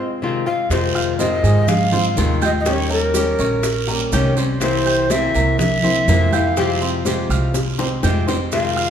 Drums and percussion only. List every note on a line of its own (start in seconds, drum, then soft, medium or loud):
0.70 high bongo medium
0.70 high conga soft
0.70 long guiro medium
0.70 maracas medium
0.95 high conga soft
0.95 maracas soft
1.19 high bongo medium
1.19 high conga medium
1.19 short guiro medium
1.19 maracas medium
1.43 high conga soft
1.43 short guiro medium
1.43 maracas soft
1.68 high bongo medium
1.68 high conga soft
1.68 low conga medium
1.68 long guiro medium
1.68 maracas medium
1.92 high bongo soft
1.92 high conga soft
1.92 low conga medium
1.92 maracas soft
2.16 high bongo soft
2.16 low bongo medium
2.16 high conga medium
2.16 short guiro medium
2.16 maracas medium
2.41 high bongo soft
2.41 high conga medium
2.41 short guiro medium
2.41 maracas soft
2.66 high bongo medium
2.66 high conga soft
2.66 long guiro medium
2.66 maracas medium
2.90 high conga soft
2.90 maracas soft
3.14 high bongo medium
3.14 high conga medium
3.14 short guiro medium
3.14 maracas medium
3.39 high conga soft
3.39 short guiro medium
3.39 maracas soft
3.63 high bongo medium
3.63 high conga soft
3.63 long guiro medium
3.63 maracas medium
3.88 high bongo soft
3.88 high conga soft
3.88 maracas soft
4.12 high bongo soft
4.12 low bongo medium
4.12 high conga medium
4.12 short guiro medium
4.12 maracas medium
4.37 high bongo soft
4.37 high conga soft
4.37 short guiro medium
4.37 maracas soft
4.61 high bongo medium
4.61 high conga soft
4.61 long guiro medium
4.61 maracas medium
4.86 high conga soft
4.86 maracas soft
5.10 high bongo medium
5.10 high conga medium
5.10 short guiro medium
5.10 maracas medium
5.35 short guiro medium
5.35 maracas soft
5.59 high bongo medium
5.59 high conga soft
5.59 low conga medium
5.59 long guiro medium
5.59 maracas medium
5.83 high bongo soft
5.83 high conga soft
5.83 low conga medium
5.83 maracas soft
6.07 high bongo soft
6.07 low bongo medium
6.07 high conga medium
6.07 short guiro medium
6.07 maracas medium
6.31 high bongo soft
6.31 high conga medium
6.31 short guiro medium
6.31 maracas soft
6.57 high bongo medium
6.57 high conga soft
6.57 long guiro medium
6.57 maracas medium
6.81 high conga soft
6.81 maracas soft
7.05 high bongo medium
7.05 high conga loud
7.05 short guiro medium
7.05 maracas medium
7.30 high conga soft
7.30 short guiro medium
7.30 maracas soft
7.54 high bongo loud
7.54 high conga soft
7.54 long guiro medium
7.54 maracas medium
7.79 low bongo loud
7.79 high conga soft
7.79 maracas soft
8.03 low bongo medium
8.03 high conga medium
8.03 short guiro medium
8.03 maracas medium
8.28 low bongo loud
8.28 high conga soft
8.28 short guiro medium
8.28 maracas soft
8.52 high bongo medium
8.52 high conga soft
8.52 long guiro medium
8.52 maracas medium
8.77 high conga soft
8.77 maracas soft